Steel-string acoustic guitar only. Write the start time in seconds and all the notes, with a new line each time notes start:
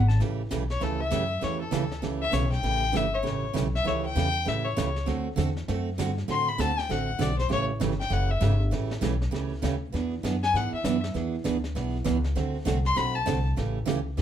0.20 C#3 E3 A3 C#4 G4
0.51 C#3 E3 A3 C#4 G4
0.80 C#3 E3 A3 C#4 G4
1.11 C#3 E3 A3 C#4 G4
1.41 C#3 E3 A3 C#4 G4
1.71 C#3 E3 A3 C#4 G4
2.02 C#3 E3 A3 C#4 G4
2.31 C#3 E3 A3 C#4 G4
2.63 C#3 E3 A3 C#4 G4
2.92 C#3 E3 A3 C#4 G4
3.23 C#3 E3 A3 C#4 G4
3.53 C#3 E3 A3 C#4 G4
3.84 C#3 E3 A3 C#4 G4
4.16 C#3 E3 A3 C#4 G4
4.45 C#3 E3 A3 C#4 G4
4.76 C#3 E3 A3 C#4 G4
5.06 D3 A3 C4 F#4 A4
5.36 D3 A3 C4 F#4 A4
5.68 D3 A3 C4 F#4 A4
5.98 D3 A3 C4 F#4 A4
6.28 D3 A3 C4 F#4 A4
6.58 D3 A3 C4 F#4 A4
6.89 D3 A3 C4 F#4 A4
7.19 D3 A3 C4 F#4 A4
7.48 C#3 E3 A3 C#4 G4
7.80 C#3 E3 A3 C#4 G4
8.10 C#3 E3 A3 C#4 G4
8.40 C#3 E3 A3 C#4 G4
8.71 C#3 E3 A3 C#4 G4
9.01 C#3 E3 A3 C#4 G4
9.31 C#3 E3 A3 C#4 G4
9.62 C#3 E3 A3 C#4 G4
9.92 E3 B3 D4 G#4
10.23 E3 B3 D4 G#4
10.53 E3 B3 D4 G#4
10.85 E3 B3 D4 G#4
11.14 E3 B3 D4 G#4
11.44 E3 B3 D4 G#4
11.75 E3 B3 D4 G#4
12.04 E3 B3 D4 G#4
12.35 D3 A3 C4 F#4 A4
12.65 D3 A3 C4 F#4 A4
12.95 D3 A3 C4 F#4 A4
13.26 D3 A3 C4 F#4 A4
13.56 C#3 E3 A3 C#4 G4
13.85 C#3 E3 A3 C#4 G4
14.17 E3 B3 D4 G#4